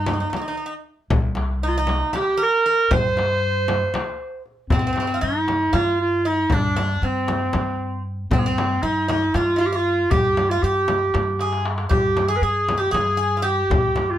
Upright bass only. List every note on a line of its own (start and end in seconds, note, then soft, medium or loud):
0.00 0.21 G2 loud
1.10 2.01 C2 loud
2.91 3.81 G2 loud
4.70 5.16 G2 medium
5.22 5.68 G2 medium
5.73 6.42 G2 medium
6.50 6.96 G2 medium
7.02 7.48 G2 medium
7.54 8.22 G2 medium
8.31 8.76 G2 medium
8.83 9.28 G2 medium
9.34 10.02 G2 medium
10.11 10.56 G2 medium
10.63 11.08 G2 medium
11.14 11.82 G2 medium
11.91 12.36 G2 medium
12.42 12.87 G2 medium
12.92 13.60 G2 medium
13.70 14.15 G2 medium